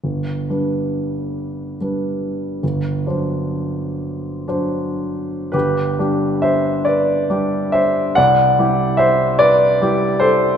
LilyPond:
\new Staff \with { instrumentName = "Grand piano" } { \time 12/8 \key g \major \tempo 4. = 46 << { r1. | <g' b'>4 <c'' e''>8 <b' d''>4 <c'' e''>8 <d'' fis''>4 <c'' e''>8 <b' d''>4 <a' c''>8 | } \\ { g,,8 <g d' b'>4. <g d' b'>4 g,,8 <fis d' c''>4. <fis d' c''>4 | g,,8 <g d' g'>4. <g d' g'>4 c,8 <g e' g'>4. <g e' g'>4 | } >> }